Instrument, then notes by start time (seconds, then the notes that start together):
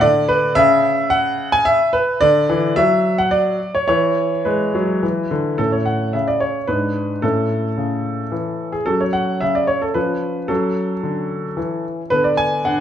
grand piano
0.01 D3 D5
0.28 B4
0.55 C#3 E5
1.10 F#5
1.52 G#5
1.65 E5
1.93 B4
2.21 D3 D5
2.49 E3
2.76 F#3 E5
3.18 F#5
3.31 D5
3.75 C#5
3.88 E3 C#5
4.45 G#3 B4
4.75 F#3
5.03 E3
5.31 D3
5.58 A2 C#4 A4
5.72 C#5
5.86 F#5
6.13 C#3 E5
6.28 D5
6.40 C#5
6.67 G#2 D4 B4
7.22 A2 C#4 A4
7.78 C#3
8.32 E3
8.72 G#4
8.86 F#3 C#4 A4
9.01 C#5
9.13 F#5
9.41 C#3 E5
9.55 D5
9.67 C#5
9.82 A4
9.94 F3 C#4 B4
10.48 F#3 C#4 A4
11.03 D3
11.57 E3
12.10 D3 B3 B4
12.24 D5
12.37 G#5
12.65 D4 F#5